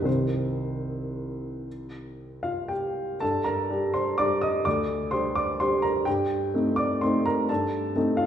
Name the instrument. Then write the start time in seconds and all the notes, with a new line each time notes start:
upright piano
0.02 C2 D#3 C4 G4 C5
2.43 F4 F5
2.68 G4 G5
3.20 G2 A4 A5
3.44 A#4 A#5
3.70 G3 D4 G4
3.94 C5 C6
4.18 G3 D4 G4 D5 D6
4.41 D#5 D#6
4.65 D2 D5 D6
5.11 G3 D4 G4 C5 C6
5.35 D5 D6
5.60 G3 D4 G4 C5 C6
5.82 A#4 A#5
6.05 G2 G4 G5
6.54 A3 C4 D#4
6.76 D5 D6
7.01 A3 C4 D#4 C5 C6
7.26 A#4 A#5
7.49 G2 A4 A5
7.96 A3 C4 D#4
8.17 F4 F5